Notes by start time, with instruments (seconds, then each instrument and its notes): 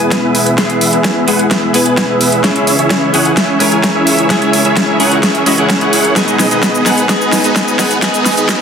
Already playing: detuned saw bass E2, analog synth pad B2 E3 G#3 E4 G#4, clean electric guitar G#3 B3 E4 B4, supersaw synth B3 E4 G#4 B4 G#5
0.11 kick, snare, closed hi-hat
0.23 detuned saw bass E2, supersaw synth B3 E4 G#4 B4 E5
0.35 open hi-hat
0.46 closed hi-hat
0.57 detuned saw bass E2, clean electric guitar G#3 B3 E4 G#4, supersaw synth B3 E4 G#4 B4, kick, snare, closed hi-hat
0.70 closed hi-hat
0.81 open hi-hat
0.93 detuned saw bass E2, supersaw synth B3 E4 G#4 B4 E5, closed hi-hat
1.04 kick, snare, closed hi-hat
1.27 detuned saw bass E2, clean electric guitar G#3 B3 E4 G#4, supersaw synth B3 E4 G#4 B4 F#5, open hi-hat
1.39 closed hi-hat
1.51 detuned saw bass E2, supersaw synth B3 E4 G#4 B4 E5, kick, snare, closed hi-hat
1.73 detuned saw bass E2, clean electric guitar G#3 B3 E4 B4, supersaw synth B3 E4 G#4 B4 G#5, open hi-hat
1.86 closed hi-hat
1.97 kick, snare, closed hi-hat
2.09 detuned saw bass E2, supersaw synth B3 E4 G#4 B4 E5
2.21 open hi-hat
2.32 closed hi-hat
2.43 detuned saw bass C#2, analog synth pad C#3 E4, clean electric guitar G#3 C#4 E4 G#4, supersaw synth C#4 E4 G#4 C#5 E5, kick, snare, closed hi-hat
2.56 closed hi-hat
2.67 open hi-hat
2.79 detuned saw bass C#2, supersaw synth C#4 E4 G#4 C#5 E5, closed hi-hat
2.90 kick, snare, closed hi-hat
3.13 detuned saw bass C#2, clean electric guitar G#3 C#4 E4 G#4, supersaw synth C#4 E4 G#4 C#5 F#5, open hi-hat
3.25 closed hi-hat
3.37 detuned saw bass C#2, supersaw synth C#4 E4 G#4 C#5 E5, kick, snare, closed hi-hat
3.59 detuned saw bass C#2, clean electric guitar G#3 C#4 E4 A#4, supersaw synth C#4 E4 G#4 C#5 G#5, open hi-hat
3.72 closed hi-hat
3.84 kick, snare, closed hi-hat
3.95 detuned saw bass C#2, supersaw synth C#4 E4 G#4 C#5 E5
4.07 open hi-hat
4.18 closed hi-hat
4.29 clean electric guitar G#3 C#4 E4 G#4, supersaw synth C#4 E4 G#4 C#5 E5, analog synth pad A#4, kick, snare, closed hi-hat
4.42 closed hi-hat
4.53 open hi-hat
4.65 detuned saw bass C#2, supersaw synth C#4 E4 G#4 C#5 E5, closed hi-hat
4.77 kick, snare, closed hi-hat
4.99 detuned saw bass C#2, clean electric guitar G#3 C#4 E4 G#4, supersaw synth C#4 E4 G#4 C#5 F#5, open hi-hat
5.12 closed hi-hat
5.23 detuned saw bass C#2, supersaw synth C#4 E4 G#4 C#5 E5, kick, snare, closed hi-hat
5.35 closed hi-hat
5.46 detuned saw bass C#2, clean electric guitar G#3 C#4 E4 F#4, supersaw synth C#4 E4 G#4 C#5 D#5, open hi-hat
5.57 detuned saw bass C#2, clean electric guitar G#3 C#4 E4 G#4, supersaw synth C#4 E4 G#4 C#5 F#5, closed hi-hat
5.70 kick, snare, closed hi-hat
5.81 detuned saw bass C#2, supersaw synth C#4 E4 G#4 C#5 F#5, closed hi-hat
5.93 open hi-hat
6.05 closed hi-hat
6.15 detuned saw bass G#1, analog synth pad B2 D#3 G#3 D#4 G#4, clean electric guitar G#3 B3 D#4 G#4, supersaw synth B3 B4, kick, snare, closed hi-hat, riser, shaker
6.28 closed hi-hat, shaker
6.40 snare, open hi-hat, shaker
6.51 detuned saw bass G#1, supersaw synth B3 D#4 G#4 B4 D#5, closed hi-hat, shaker
6.63 kick, snare, closed hi-hat, shaker
6.75 shaker
6.85 detuned saw bass G#1, clean electric guitar G#3 B3 D#4 G#4, supersaw synth B3 D#4 G#4 B4 F#5, snare, open hi-hat, shaker
6.98 closed hi-hat, shaker
7.08 clean electric guitar G#3 B3 D#4 G#4, supersaw synth B3 D#4 G#4 B4 D#5, kick, snare, closed hi-hat, shaker
7.21 shaker
7.33 snare, open hi-hat, shaker
7.44 detuned saw bass G#1, supersaw synth B3 D#4 G#4 B4 D#5, closed hi-hat, shaker
7.56 kick, snare, closed hi-hat, shaker
7.68 shaker
7.78 detuned saw bass G#1, clean electric guitar G#3 B3 D#4 G#4, supersaw synth B3 D#4 G#4 B4 F#5, snare, open hi-hat, shaker
7.91 closed hi-hat, shaker
8.01 clean electric guitar G#3 B3 D#4 G#4, supersaw synth B3 D#4 G#4 B4 D#5, kick, snare, closed hi-hat, shaker
8.14 closed hi-hat, shaker
8.26 snare, open hi-hat, shaker
8.37 detuned saw bass G#1, supersaw synth B3 D#4 G#4 B4 D#5, closed hi-hat, shaker
8.49 kick, snare, closed hi-hat, shaker